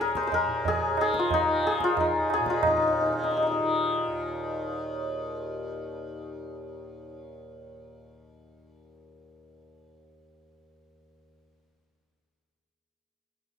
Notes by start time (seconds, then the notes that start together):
Already playing: D#2 A#2 D#3 G#4 C5
0.01 A#4
0.08 tabla te
0.15 C5, tabla ke
0.23 C5, tabla te
0.32 A#4, tabla na, tabla ge
0.46 A#2, tabla te
0.65 G#4, tabla tin, tabla ge
0.96 D#3, tabla na
1.01 G#4
1.14 tabla ke
1.19 F4
1.31 D#4, tabla na, tabla ge
1.43 D#3
1.63 G#4, tabla na
1.80 F4, tabla ke
1.91 D#2
1.97 D#4, tabla na, tabla ge
2.30 G#4, tabla na
2.40 A#2
2.46 F4, tabla ke
2.62 A#2, tabla na, tabla ge
2.67 D#4
2.77 D#4
2.82 D#4
2.87 D#4
2.93 D#4
3.01 D#4
3.06 D#4
3.10 D#3 D#4
3.19 D#4
3.24 D#4
3.31 D#4
3.37 D#4
3.43 D#4
3.47 D#4
3.52 D#4
3.59 D#3
4.07 D#2